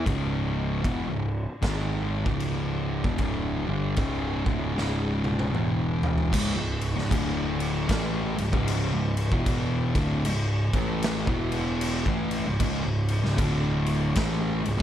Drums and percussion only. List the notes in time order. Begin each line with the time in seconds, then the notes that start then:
0.06 kick, crash
0.84 kick, crash
1.62 kick, snare, crash
2.26 kick
2.40 crash
3.04 kick
3.18 kick, crash
3.96 kick, crash
4.46 kick
4.78 snare
5.24 high tom
5.39 high tom
5.54 mid tom
6.03 floor tom
6.18 floor tom
6.33 kick, crash
6.81 crash
6.98 snare
7.11 kick, crash
7.60 crash
7.89 kick, snare, crash
8.38 crash
8.53 kick
8.68 crash
9.17 crash
9.32 kick
9.46 kick, crash
9.95 kick, crash
10.25 crash
10.73 kick, crash
11.02 snare, crash
11.27 kick
11.52 crash
11.81 crash
12.06 kick
12.31 crash
12.60 kick, crash
13.08 crash
13.25 snare
13.38 kick, crash
13.86 crash
14.15 kick, snare, crash
14.65 crash